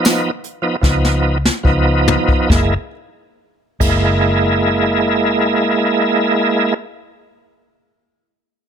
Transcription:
Already playing: tonewheel organ F3 B3 D#4
0.05 snare, closed hi-hat, tambourine
0.44 closed hi-hat
0.62 tonewheel organ F3 B3 D#4
0.82 fingered electric bass C#2, tonewheel organ F3 B3 D#4, kick, snare
1.05 snare
1.46 snare
1.63 fingered electric bass C#2, tonewheel organ F3 B3 D#4, kick
2.08 floor tom
2.29 muted fingered electric bass stroke, kick
2.50 fingered electric bass F#1, tonewheel organ G#3 A#3 E4, kick, snare
3.80 fingered electric bass F#1, tonewheel organ G#3 A#3 E4, kick, crash

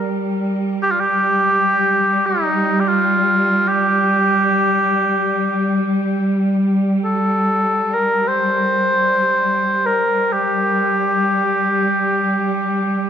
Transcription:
Already playing: cello section G3, oboe A#4
0.82 oboe G4
0.91 oboe F4
1.00 oboe G4
2.26 oboe D#4
2.80 oboe G4
2.88 oboe F4
3.68 oboe G4
7.05 oboe A4
7.94 oboe A#4
8.28 oboe C5
9.86 oboe A#4
9.95 cello section G3
10.33 oboe G4

